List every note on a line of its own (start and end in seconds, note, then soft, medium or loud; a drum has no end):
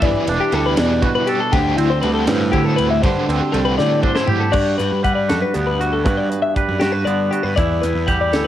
0.00 0.13 G1 loud
0.00 0.50 E3 medium
0.00 1.52 E3 medium
0.00 0.52 G3 medium
0.00 0.28 G3 loud
0.00 0.26 B3 loud
0.00 0.25 E4 medium
0.00 0.28 D5 loud
0.00 kick loud
0.00 ride loud
0.25 0.39 E1 loud
0.25 0.51 G3 medium
0.25 0.52 B3 medium
0.25 0.53 E4 medium
0.25 0.40 B4 medium
0.25 ride medium
0.29 1.78 D4 medium
0.40 0.54 G4 medium
0.51 0.75 D2 medium
0.51 0.79 E3 medium
0.51 0.78 G3 medium
0.51 2.03 G3 medium
0.51 0.76 B3 medium
0.51 0.76 E4 medium
0.51 0.65 A4 medium
0.51 ride medium
0.66 0.78 B4 medium
0.76 1.00 E2 medium
0.76 1.50 B2 medium
0.76 1.51 E3 medium
0.76 1.29 G3 medium
0.76 1.27 B3 medium
0.76 1.25 E4 medium
0.76 1.02 D5 medium
0.76 snare loud
0.76 ride loud
1.02 1.49 F#4 medium
1.02 1.14 B4 medium
1.02 kick medium
1.02 ride medium
1.15 1.28 B4 medium
1.26 1.52 G3 medium
1.26 1.51 B3 medium
1.26 1.54 E4 medium
1.26 1.40 G4 medium
1.26 1.50 A4 medium
1.26 ride medium
1.40 1.53 A4 medium
1.51 1.75 D2 loud
1.51 2.02 D3 medium
1.51 3.00 D3 medium
1.51 1.80 A3 loud
1.51 1.78 C4 loud
1.51 1.76 F#4 loud
1.51 1.77 G4 medium
1.51 kick loud
1.51 ride loud
1.77 2.00 D2 medium
1.77 2.04 A3 medium
1.77 3.00 C4 medium
1.77 2.05 C4 medium
1.77 1.90 E4 medium
1.77 2.05 F#4 medium
1.77 ride medium
1.90 2.01 C5 medium
2.02 2.28 D2 loud
2.02 2.30 D3 medium
2.02 3.53 G3 medium
2.02 2.29 A3 medium
2.02 2.28 C4 medium
2.02 2.14 B4 medium
2.02 ride medium
2.06 2.26 F#4 medium
2.14 2.26 A4 medium
2.26 2.51 G2 loud
2.26 3.00 A2 medium
2.26 2.79 C4 medium
2.26 2.77 F#4 medium
2.26 2.52 B4 medium
2.26 snare loud
2.26 ride loud
2.30 3.02 D3 medium
2.30 2.80 A3 medium
2.52 2.75 D3 medium
2.52 3.00 E4 medium
2.52 2.64 G4 medium
2.52 kick medium
2.52 ride medium
2.64 2.77 A4 medium
2.76 3.01 D2 loud
2.76 3.05 C4 medium
2.76 3.05 F#4 medium
2.76 2.90 B4 medium
2.76 ride medium
2.82 3.03 A3 medium
2.90 3.02 E5 medium
3.02 3.15 G2 loud
3.02 3.52 D3 medium
3.02 4.52 D3 medium
3.02 3.30 A3 medium
3.02 3.29 C4 loud
3.02 3.28 C5 loud
3.02 kick loud
3.02 ride loud
3.07 3.27 F#4 loud
3.28 3.40 D2 loud
3.28 4.52 C4 medium
3.28 3.55 C4 medium
3.28 3.56 F#4 medium
3.28 3.41 B4 medium
3.28 ride medium
3.32 3.53 A3 medium
3.41 3.52 G4 medium
3.52 3.76 C2 medium
3.52 3.80 D3 medium
3.52 4.51 G3 medium
3.52 3.79 A3 medium
3.52 3.78 C4 medium
3.52 3.65 A4 medium
3.52 ride medium
3.57 3.76 F#4 medium
3.65 3.78 B4 medium
3.77 4.51 A2 medium
3.77 4.02 D3 medium
3.77 4.54 D3 medium
3.77 4.31 A3 medium
3.77 4.30 C4 medium
3.77 4.28 F#4 medium
3.77 4.02 D5 medium
3.77 snare medium
4.03 4.16 D4 medium
4.03 4.14 C5 medium
4.03 kick medium
4.15 4.52 E4 medium
4.15 4.28 C5 medium
4.15 snare medium
4.27 4.53 F#4 medium
4.27 4.40 G4 medium
4.27 5.04 G4 medium
4.27 floor tom loud
4.31 4.54 A3 medium
4.31 4.54 C4 medium
4.40 4.54 A4 medium
4.51 6.03 G2 medium
4.51 4.77 G2 loud
4.51 5.28 F#4 medium
4.51 4.78 D5 medium
4.51 kick loud
4.51 crash medium
4.78 4.91 G2 medium
4.78 5.04 B4 medium
4.78 closed hi-hat medium
4.92 5.32 G2 medium
5.03 6.08 G3 medium
5.03 6.57 B4 medium
5.03 5.15 F#5 medium
5.03 kick medium
5.03 closed hi-hat medium
5.15 5.29 D5 medium
5.29 5.42 F#2 medium
5.29 5.79 F#4 medium
5.29 5.42 A4 medium
5.29 snare loud
5.29 closed hi-hat medium
5.42 5.54 B4 medium
5.54 6.06 D2 medium
5.54 6.02 D3 medium
5.54 7.06 B3 medium
5.54 5.67 G4 medium
5.54 closed hi-hat medium
5.67 5.80 B4 medium
5.80 5.93 F#4 medium
5.80 6.03 F#4 medium
5.80 closed hi-hat medium
5.93 6.05 A4 medium
6.04 7.56 G2 medium
6.04 6.28 G2 medium
6.04 6.80 F#4 medium
6.04 6.17 B4 medium
6.04 kick loud
6.04 closed hi-hat medium
6.17 6.30 D5 medium
6.30 6.42 B4 medium
6.30 closed hi-hat medium
6.42 6.55 E5 medium
6.55 8.07 G3 medium
6.55 8.08 B4 medium
6.55 6.80 D5 medium
6.55 kick medium
6.55 closed hi-hat medium
6.68 6.80 F#2 medium
6.80 7.04 G2 medium
6.80 7.32 F#4 medium
6.80 6.92 G4 medium
6.80 snare loud
6.80 closed hi-hat medium
6.92 7.06 B4 medium
7.05 7.29 G2 medium
7.05 7.54 D3 medium
7.05 8.47 B3 medium
7.05 7.31 D5 medium
7.05 closed hi-hat medium
7.31 7.54 F#4 medium
7.31 7.43 G4 medium
7.31 closed hi-hat medium
7.43 7.55 G2 medium
7.43 7.56 B4 medium
7.56 7.80 E2 loud
7.56 8.47 E3 medium
7.56 8.35 E4 medium
7.56 7.82 D5 medium
7.56 kick loud
7.56 closed hi-hat medium
7.82 7.94 E2 medium
7.82 8.07 B4 medium
7.82 closed hi-hat medium
7.95 8.34 E2 medium
8.07 8.47 G3 medium
8.07 8.47 G4 medium
8.07 8.20 F#5 medium
8.07 kick medium
8.07 closed hi-hat medium
8.21 8.33 D5 medium
8.33 8.45 D2 medium
8.33 8.47 E4 medium
8.33 8.45 A4 medium
8.33 snare loud
8.33 closed hi-hat medium